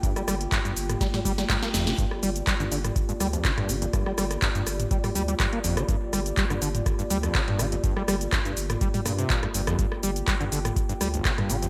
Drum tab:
HH |xxoxxxoxxooxxxox|x-oxxxoxxxoxxxox|x-oxxxoxxooxxxox|x-oxxxoxxxoxxxox|
SH |xxxxxxxxxxxxxxxx|x-xxxxxxxxxxx-xx|x-xxxxxxxxxxx-xx|x-xxxxxxxxxxx-xx|
CP |----x-------x---|----x-------x---|----x-------x---|----x-------x---|
SD |-rr-r--roo-ooooo|-r--r--r--r-rr--|rrrr--r--r--r--r|--r--r--r--rr-r-|
T2 |-------o-o------|-------o-----oo-|-------o-o------|-------o-----oo-|
BD |o---o---o-o-o---|o---o---o---o---|o---o---o---o---|o---o---o---o---|

HH |x-oxxxoxxooxxxox|x-oxxxoxxxoxxxox|
SH |x-xxxxxxxxxxx-xx|x-xxxxxxxxxxx-xx|
CP |----x-------x---|----x-------x---|
SD |-rr-r--r--r--r-r|-r--r--r--r-rr--|
T2 |-------o-o------|-------o-----oo-|
BD |o---o---o---o---|o---o---o---o---|